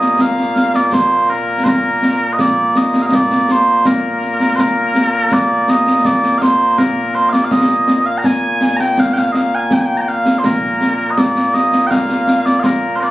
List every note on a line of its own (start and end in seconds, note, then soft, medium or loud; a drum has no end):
0.00 13.11 A#2 medium
0.00 13.11 A#3 medium
0.00 0.21 D#5 medium
0.00 snare medium
0.19 0.76 F5 loud
0.19 concert bass drum soft
0.19 snare medium
0.38 snare medium
0.56 snare medium
0.74 0.87 D5 medium
0.74 snare medium
0.87 0.93 D5 medium
0.92 1.30 C5 medium
0.92 concert bass drum medium
0.92 snare medium
1.29 1.64 A#4 medium
1.29 snare soft
1.64 1.69 C5 medium
1.64 concert bass drum medium
1.64 snare medium
1.69 2.33 A#4 medium
2.02 snare medium
2.33 2.41 D#5 medium
2.39 2.77 D5 medium
2.39 concert bass drum medium
2.39 snare medium
2.75 3.02 D#5 medium
2.75 snare medium
2.94 snare medium
3.02 3.06 F5 medium
3.06 3.15 D#5 medium
3.12 3.52 D5 loud
3.12 concert bass drum medium
3.12 snare loud
3.31 snare medium
3.49 3.86 C5 medium
3.49 snare medium
3.85 4.56 A#4 medium
3.85 concert bass drum medium
3.85 snare loud
4.22 snare soft
4.40 snare medium
4.56 4.60 C5 loud
4.56 concert bass drum medium
4.56 snare medium
4.60 5.33 A#4 loud
4.95 snare medium
5.32 5.70 D5 loud
5.32 concert bass drum medium
5.32 snare loud
5.68 6.06 D#5 medium
5.68 snare medium
5.87 snare medium
6.05 6.38 D5 loud
6.05 concert bass drum medium
6.05 snare loud
6.23 snare medium
6.38 6.78 C5 medium
6.38 6.42 F5 medium
6.38 snare medium
6.78 7.15 A#4 medium
6.78 concert bass drum medium
6.78 snare loud
7.15 7.29 C5 medium
7.15 snare soft
7.29 7.45 D5 medium
7.29 7.33 F5 medium
7.29 snare medium
7.45 7.52 F5 medium
7.51 8.06 D#5 loud
7.51 concert bass drum medium
7.51 snare loud
7.88 snare loud
8.06 8.18 F5 loud
8.18 8.25 A#5 medium
8.24 8.76 G#5 loud
8.24 concert bass drum medium
8.24 snare loud
8.61 snare medium
8.76 9.00 G5 medium
8.76 8.80 A#5 medium
8.76 snare medium
8.97 9.14 F5 loud
8.97 concert bass drum medium
8.97 snare medium
9.14 9.18 G5 medium
9.14 snare medium
9.18 9.32 F5 loud
9.32 9.37 D#5 medium
9.32 snare medium
9.37 9.55 F5 loud
9.55 9.73 G#5 loud
9.71 9.79 G5 loud
9.71 concert bass drum medium
9.71 snare loud
9.79 9.85 G#5 medium
9.85 9.97 G5 medium
9.97 10.08 G5 medium
9.97 10.01 A#5 medium
10.07 10.39 F5 loud
10.07 snare soft
10.26 snare medium
10.39 10.45 C5 medium
10.44 11.11 A#4 medium
10.44 concert bass drum medium
10.44 snare loud
10.81 snare medium
11.11 11.18 D#5 medium
11.18 11.54 D5 medium
11.18 concert bass drum medium
11.18 snare loud
11.36 snare medium
11.54 11.87 D#5 loud
11.54 snare medium
11.72 snare medium
11.87 12.46 F5 medium
11.87 11.91 G5 medium
11.91 concert bass drum medium
11.91 snare medium
12.09 snare medium
12.27 snare medium
12.46 12.60 D5 medium
12.46 snare medium
12.60 12.63 F5 medium
12.64 12.96 A#4 medium
12.64 concert bass drum medium
12.64 snare medium
12.96 13.00 C5 medium
13.00 13.02 A#4 medium
13.00 13.11 D5 medium
13.00 snare soft